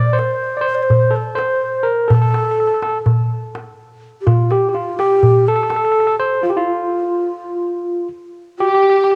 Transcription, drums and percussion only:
0.19 darbuka tek
0.90 darbuka dum
1.38 darbuka tek
2.10 darbuka dum
2.34 darbuka tek
2.83 darbuka tek
3.06 darbuka dum
3.55 darbuka tek
4.27 darbuka dum
4.51 darbuka tek
4.99 darbuka tek
5.23 darbuka dum
5.70 darbuka tek

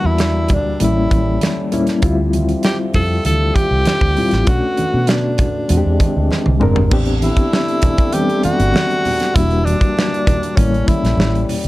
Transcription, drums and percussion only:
0.18 snare, closed hi-hat
0.48 kick, closed hi-hat, muted conga, low conga
0.80 closed hi-hat, muted conga, high conga
1.11 kick, closed hi-hat, muted conga, high conga
1.41 snare, closed hi-hat, high conga
1.72 closed hi-hat, low conga
1.87 snare, closed hi-hat
2.02 kick, closed hi-hat, muted conga
2.33 closed hi-hat, muted conga, high conga
2.49 closed hi-hat
2.63 snare, closed hi-hat
2.94 kick, open hi-hat, low conga
3.25 closed hi-hat, muted conga, high conga
3.56 kick, closed hi-hat, muted conga, high conga
3.85 snare, closed hi-hat, muted conga, high conga
4.01 kick
4.17 open hi-hat, low conga
4.31 snare, closed hi-hat
4.47 kick, closed hi-hat, muted conga
4.77 closed hi-hat, muted conga, high conga
5.07 snare, closed hi-hat
5.38 kick, closed hi-hat, muted conga, low conga
5.69 closed hi-hat, high conga, low conga
6.00 kick, closed hi-hat, muted conga, high conga
6.31 snare, muted conga, high conga
6.46 high tom
6.61 mid tom, low conga
6.76 floor tom
6.91 kick, crash, muted conga
7.05 closed hi-hat
7.22 closed hi-hat, muted conga, high conga
7.37 kick, closed hi-hat
7.53 snare, muted conga
7.68 closed hi-hat
7.82 kick, closed hi-hat, high conga, low conga
7.98 kick, closed hi-hat
8.12 closed hi-hat, muted conga, high conga
8.29 closed hi-hat
8.43 closed hi-hat, muted conga, high conga
8.60 closed hi-hat
8.74 snare, muted conga, high conga
8.90 closed hi-hat
9.05 open hi-hat, muted conga, low conga
9.20 snare, closed hi-hat
9.36 kick, closed hi-hat, muted conga
9.50 closed hi-hat
9.66 closed hi-hat, muted conga, high conga
9.81 kick, closed hi-hat
9.97 snare, muted conga
10.14 closed hi-hat
10.27 kick, closed hi-hat, high conga, low conga
10.43 closed hi-hat
10.57 kick, closed hi-hat, high conga
10.74 closed hi-hat
10.88 kick, closed hi-hat, muted conga, high conga
11.05 snare, closed hi-hat
11.17 snare, high conga
11.35 closed hi-hat
11.49 open hi-hat, low conga
11.64 closed hi-hat

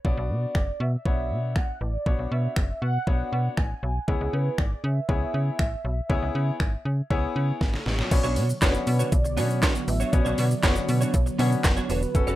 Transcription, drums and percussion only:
0.05 kick
0.55 finger snap, kick
1.06 kick
1.56 finger snap, kick
2.06 kick
2.56 finger snap, kick
3.07 kick
3.57 finger snap, kick
4.08 kick
4.58 finger snap, kick
5.09 kick
5.59 finger snap, kick
6.10 kick
6.60 finger snap, kick
7.11 kick
7.61 kick, snare
7.74 snare
7.86 snare
7.99 snare
8.11 kick, closed hi-hat, crash, shaker
8.24 shaker
8.36 open hi-hat, shaker
8.49 shaker
8.62 kick, snare, clap, closed hi-hat, shaker
8.74 shaker
8.87 open hi-hat, shaker
9.00 shaker
9.12 kick, closed hi-hat, shaker
9.25 shaker
9.37 open hi-hat, shaker
9.50 shaker
9.62 kick, snare, clap, closed hi-hat, shaker
9.75 shaker
9.88 open hi-hat, shaker
10.00 shaker
10.13 kick, closed hi-hat, shaker
10.26 shaker
10.38 open hi-hat, shaker
10.51 shaker
10.63 kick, snare, clap, closed hi-hat, shaker
10.76 shaker
10.89 open hi-hat, shaker
11.01 shaker
11.14 kick, closed hi-hat, shaker
11.27 shaker
11.39 open hi-hat, shaker
11.52 shaker
11.64 kick, snare, clap, closed hi-hat, shaker
11.77 shaker
11.90 open hi-hat, shaker
12.02 shaker
12.15 kick, closed hi-hat, shaker
12.27 shaker

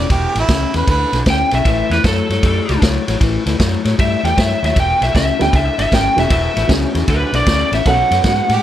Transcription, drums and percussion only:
0.10 kick, snare, ride
0.35 snare, ride
0.49 kick, snare, ride
0.74 snare, ride
0.87 kick, snare, ride
1.13 snare, ride
1.26 kick, snare, ride
1.51 snare, ride
1.65 kick, snare, ride
1.91 snare, ride
2.04 kick, snare, ride
2.30 snare, ride
2.43 kick, snare, ride
2.69 snare, ride
2.82 kick, snare, ride
3.08 snare, ride
3.21 kick, snare, ride
3.46 snare, ride
3.60 kick, snare, ride
3.85 snare, ride
3.99 kick, snare, ride
4.25 snare, ride
4.38 kick, snare, ride
4.64 snare, ride
4.76 kick, snare, ride
5.02 snare, ride
5.15 kick, snare, ride
5.41 snare, ride
5.53 kick, snare, ride
5.79 snare, ride
5.92 kick, snare, ride
6.18 snare, ride
6.30 kick, snare, ride
6.57 snare, ride
6.69 kick, snare, ride
6.95 snare, ride
7.08 kick, snare, ride
7.33 snare, ride
7.46 kick, snare, ride
7.73 snare, ride
7.86 kick, snare, ride
8.11 snare, ride
8.24 kick, snare, ride
8.49 snare, ride

